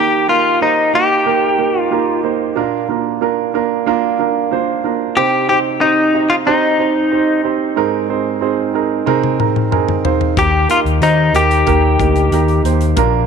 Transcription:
Already playing: D#3 A#3 D#4 G4 A#4
0.28 A#3 D#4 F4 G4 A#4
0.61 A#3 D#4 G4 C5
0.93 A#3 D#4 G4 A#4
1.26 A#3 D#4 G4 A#4
1.58 A#3 D#4 G4 A#4
1.80 F4
1.91 A#3 D#4 G4 A#4
2.23 A#3 D#4 G4 C5
2.56 A#2 A#3 D4 F4 A#4
2.89 A#3 D4 F4 A#4
3.21 A#3 D4 F4 A#4
3.54 A#3 D4 F4 A#4
3.86 A#3 D4 F4 A#4
4.19 A#3 D4 F4 A#4
4.51 A#3 D4 F4 C5
4.84 A#3 D4 F4 A#4
5.16 C3 C4 D#4 G4 C5
5.49 C4 D#4 G4 C5
5.81 C4 D#4 G4 C5
6.13 C4 D#4 G4 D#5
6.30 F4
6.46 C4 D#4 G4 C5
6.78 C4 D#4 G4 C5
7.11 C4 D#4 G4 C5
7.44 C4 D#4 G4 C5
7.76 G#2 C4 D#4 G#4 A#4
8.09 C4 D#4 G#4 C5
8.41 C4 D#4 G#4 C5
8.74 C4 D#4 G#4 A#4
9.06 C4 D#4 G#4 A#4, high tom
9.24 high tom
9.39 C4 D#4 G#4 A#4 A#5, mid tom
9.56 mid tom
9.71 C4 D#4 G#4 A#4 G#5, mid tom
9.88 mid tom
10.04 C4 D#4 G#4 C5 F5, floor tom
10.21 floor tom
10.37 D#2 D#3 A#3 D#4 G4 A#4, kick, closed hi-hat
10.69 A#3 D#4 F4 G4 A#4, closed hi-hat
10.85 D#2, closed hi-hat
11.01 D#2 A#3 D#4 G4 C5, closed hi-hat
11.34 D#2 A#3 D#4 G4 A#4, closed hi-hat
11.51 closed hi-hat
11.66 D#2 A#3 D#4 G4 A#4, kick, closed hi-hat
11.99 D2 A#3 D#4 G4 A#4, kick, closed hi-hat
12.16 closed hi-hat
12.31 D#2 A#3 D#4 G4 A#4, closed hi-hat
12.48 closed hi-hat
12.64 D#2 A#3 D#4 G4 C5, closed hi-hat
12.81 closed hi-hat
12.96 A#1 A#2 A#3 D4 F4 A#4, kick, closed hi-hat

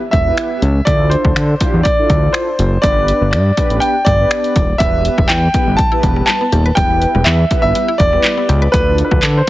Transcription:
Already playing: downlifter
0.11 E1 E5, kick, closed hi-hat
0.26 B3 E4 G4 B4
0.37 finger snap, closed hi-hat
0.62 C#2, closed hi-hat
0.85 D2 D4 E4 F4 A4 D5, kick, closed hi-hat
1.10 C5, closed hi-hat
1.25 D2, kick
1.36 D3, finger snap, closed hi-hat
1.60 D4 E4 F4 G4, kick, closed hi-hat
1.74 E2
1.83 D5, kick, closed hi-hat
1.98 D4 E4 F4 A4
2.10 D2, kick, closed hi-hat
2.33 C5, finger snap, closed hi-hat
2.59 F#1, closed hi-hat
2.82 G1 B3 D4 G4 B4 D5, kick, closed hi-hat
3.08 closed hi-hat
3.21 G1
3.31 G2 D5, finger snap, closed hi-hat
3.57 B3 D4 G4 B4, kick, closed hi-hat
3.70 A1, closed hi-hat
3.80 G5, closed hi-hat
4.05 G1 D5, kick, closed hi-hat
4.19 B3 D4 G4 B4
4.31 finger snap, closed hi-hat
4.44 closed hi-hat
4.56 D#1, kick, closed hi-hat
4.78 E1 G3 B3 E4 G4 B4 E5, kick, closed hi-hat
5.05 closed hi-hat
5.18 E1 G3, kick
5.28 E2 G5, clap, closed hi-hat
5.54 B3 E4 G4 B4, kick, closed hi-hat
5.67 G1
5.77 G3 A5, kick, closed hi-hat
5.92 B3 E4 G4 B4
6.03 E1, kick, closed hi-hat
6.16 G3
6.26 G3 A5, clap, closed hi-hat
6.41 B3
6.52 D#1 G4, closed hi-hat
6.66 B4
6.75 E1 G3 B3 E4 G4 B4 G5, kick, closed hi-hat
7.02 closed hi-hat
7.15 E1 G3
7.24 E2 E5, clap, closed hi-hat
7.51 B3 E4 G4 B4, kick, closed hi-hat
7.62 G1 E5
7.75 G3, closed hi-hat
7.88 E4
7.98 E1 D5, kick, closed hi-hat
8.13 G3 B3 E4 G4 B4
8.24 G3, clap, closed hi-hat
8.38 B3
8.49 C#2 G4, closed hi-hat
8.62 B4
8.72 D2 F3 D4 E4 F4 A4 B4, kick, closed hi-hat
8.98 closed hi-hat
9.05 B4
9.11 D2 F3, kick
9.23 D3, clap, closed hi-hat
9.37 C5

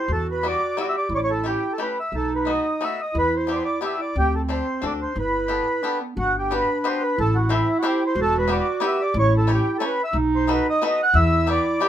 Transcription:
Already playing: E4 C5
0.08 E2 F#4
0.13 A4
0.32 B4
0.43 G3 B3 E4 F#4
0.48 D5
0.77 G3 B3 E4 F#4 G4 E5
0.82 D5
0.89 E5
0.97 D5
1.09 A1 E4
1.15 C#5 D5
1.24 C#5
1.31 A4
1.44 A3 C#4 E4 G4
1.73 A4
1.78 A3 C#4 E4 G4 B4
2.00 E5
2.12 B1 D#4 A4
2.36 B4
2.45 A3 B3 D#4 F#4
2.50 D#5
2.81 A3 B3 D#4 F#4 E5
3.02 D#5
3.14 E2 E4
3.19 B4
3.37 C5
3.47 B3 D4 E4 G4
3.52 D5
3.56 C5
3.65 D5
3.81 B3 D4 E4 G4
3.86 E5
3.98 E4 D5
4.16 D2 C4 G4
4.36 A4
4.49 C4 D4 G4 A4 C5
4.82 D2 C4 D4 F#4 A4
4.86 D5
5.02 C5
5.15 G1 E4 B4
5.48 B3 D4 G4 A4
5.82 B3 D4 G4 A4
6.02 B3
6.16 G1 D4 F#4
6.39 G4
6.51 B3 D4 F#4 G4 B4
6.84 B3 D4 F#4 G4 B4 C5
7.02 B4
7.17 A1 E4 A4
7.36 F#4
7.49 C4 E4 G4 A4 C5
7.79 C4 F#4
7.83 E4 G4 A4 C5
7.88 G4
8.07 C5
8.15 E1 F#4
8.22 A4
8.39 B4
8.48 B3 E4 F#4 G4 B4
8.52 D5
8.80 B3 E4 F#4 G4 B4
8.87 E5
9.02 D5
9.14 A1 E4
9.19 C#5
9.38 A4
9.47 C#4 E4 G4 A4 C#5
9.54 G4
9.78 C#4 E4 G4 A4 C#5
9.87 B4
10.04 E5
10.13 B1 D#4
10.36 C5
10.47 B3 D#4 F#4 A4 B4
10.52 B4
10.70 D#5
10.82 B3 D#4 F#4 A4 B4 D#5
11.03 F#5
11.14 E2 E4 E5
11.47 B3 D4 E4 G4 B4
11.51 D5
11.80 B3 D4 E4 G4 B4

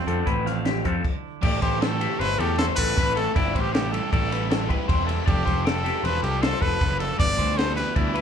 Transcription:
Already playing: F2 A3 C4 E4
0.07 F2 D3 A4, closed hi-hat
0.26 A1 E4 B4, kick, closed hi-hat
0.45 F2 A3 F5, snare, closed hi-hat
0.65 G4, snare, closed hi-hat
0.84 F2 C4 A4, kick, closed hi-hat
1.05 kick, crash
1.42 A1 A3 C4 E4 G4 A4 D5, kick, crash
1.62 A1 C4 E4 G4 A4 C5, kick, snare, ride
1.81 A3 C4 E4 A4 G5, snare, ride
2.01 C4 E4 G4 A4, ride
2.19 G1 A3 C4 E4 A4 B4 C5, snare, ride
2.38 E2 A3 C4 E4 G4 A4, ride
2.58 A3 C4 E4 A4 C5, snare, ride
2.76 A1 C4 E4 A4 B4, kick, snare, ride
2.96 A1 A3 C4 E4 A4 B4, kick, snare, ride
3.15 C4 E4 A4, ride
3.35 G1 G3 C4 E4 G4 D5, kick, ride
3.54 A1 C4 E4 G4 C5, kick, ride
3.61 G4
3.73 G3 C4 E4 G4 A4, snare, ride
3.92 C4 E4 G4 A4, ride
4.12 A1 G3 C4 E4 G4 A4 D5, kick, ride
4.30 G3 C4 E4 G4 B4, snare, ride
4.50 G3 C4 E4 G4 A4, snare, ride
4.68 C4 E4 G4 B4, kick, ride
4.88 E1 G3 C4 E4 G4 C5, kick, ride
5.07 C4 E4 G4 A4, ride
5.26 F1 F3 C4 F4 G4 A4 D5, kick, ride
5.46 F1 C4 F4 A4 C5, kick, snare, ride
5.65 F3 C4 F4 A4 G5, snare, ride
5.84 C4 F4 G4 A4, snare, ride
6.04 E1 F3 C4 F4 A4 B4 C5, snare, ride
6.22 C2 F3 C4 F4 G4 A4, ride
6.42 F3 C4 F4 A4 C5, snare, ride
6.61 F1 C4 F4 A4 B4, kick, ride
6.80 F#1 F3 C4 F4 A4 B4, kick, snare, ride
6.99 C4 F4 A4, ride
7.18 G1 G3 B3 E4 B4 D5, kick, ride
7.38 D2 B3 E4 B4 C5, kick, ride
7.57 G3 B3 E4 A4 B4 C5, snare, ride
7.76 B3 E4 G4 B4, snare, ride
7.94 D2 G3 B3 E4 B4 D5, kick, ride
8.14 G3 B3 E4 B4, ride

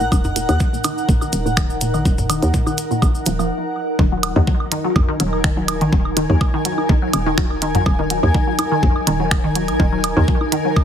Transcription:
Already playing: D#4 A#4 F#5
0.00 A#1 A#2, cabasa
0.12 D#1 D#3, kick, cabasa, high woodblock
0.24 mid tom, low bongo, cabasa
0.36 A#2, closed hi-hat, cabasa
0.49 D#2 D#3, closed hi-hat, cabasa, high woodblock
0.60 kick, cabasa
0.73 A#2, cabasa
0.84 D#3, closed hi-hat, low bongo, cabasa, high woodblock
0.98 cabasa
1.09 A#1 A#2, kick, cabasa
1.21 D#3, cabasa, high woodblock
1.33 D#1, closed hi-hat, cabasa
1.46 A#2, low bongo, cabasa
1.57 D#3, finger snap, kick, cabasa, high woodblock
1.70 cabasa
1.81 A#2, closed hi-hat, cabasa
1.94 A#1 D#3, cabasa, high woodblock
2.05 D#1, kick, low bongo, cabasa
2.18 A#2, mid tom, cabasa
2.30 D#3, closed hi-hat, cabasa, high woodblock
2.43 D#2, closed hi-hat, cabasa
2.54 A#2, kick, cabasa
2.67 D#3, low bongo, cabasa, high woodblock
2.78 closed hi-hat, cabasa
2.91 A#2, cabasa
3.02 A#1 D#3, kick, cabasa, high woodblock
3.15 cabasa
3.26 D#1 F3, closed hi-hat, low bongo, cabasa
3.39 F3, cabasa, high woodblock
3.99 D#1 D#3 D#4, kick
4.12 F#3
4.23 closed hi-hat, high woodblock
4.35 D#2 D#3 A#4, mid tom, low bongo
4.47 F#3, kick
4.60 high woodblock
4.70 D#3 G#5, closed hi-hat
4.84 F#3
4.96 A#1, kick, mid tom, low bongo, high woodblock
5.09 D#3
5.20 D#1 F#3, closed hi-hat
5.33 high woodblock
5.44 D#3, finger snap, kick
5.57 F#3, low bongo
5.68 closed hi-hat, high woodblock
5.81 A#1 D#3, closed hi-hat
5.93 D#1 F#3, kick
6.05 high woodblock
6.17 D#3, closed hi-hat, low bongo
6.30 D#2 F#3, mid tom
6.41 kick, high woodblock
6.54 D#3
6.65 F#3, closed hi-hat
6.78 low bongo, high woodblock
6.89 A#1 D#3, kick
7.02 F#3
7.13 D#1, closed hi-hat, high woodblock
7.26 D#3
7.38 F#3, finger snap, kick, low bongo
7.51 high woodblock
7.62 D#3, closed hi-hat
7.75 A#1 F#3, closed hi-hat, mid tom
7.86 D#1, kick, high woodblock
7.99 D#3, low bongo
8.10 F#3, closed hi-hat
8.23 D#2, mid tom, high woodblock
8.34 D#3, kick
8.47 F#3
8.59 closed hi-hat, low bongo, high woodblock
8.72 D#3
8.83 A#1 F#3, kick, mid tom
8.96 high woodblock
9.07 D#1 D#3, closed hi-hat
9.20 F#3, low bongo
9.31 finger snap, kick, high woodblock
9.44 D#3
9.55 F#3, closed hi-hat
9.68 A#1, closed hi-hat, high woodblock
9.80 D#1 D#3, kick, low bongo
9.92 F#3
10.04 closed hi-hat, high woodblock
10.17 D#2 D#3, mid tom
10.28 F#3, kick
10.41 low bongo, high woodblock
10.52 D#3, closed hi-hat
10.65 F#3
10.76 kick, high woodblock

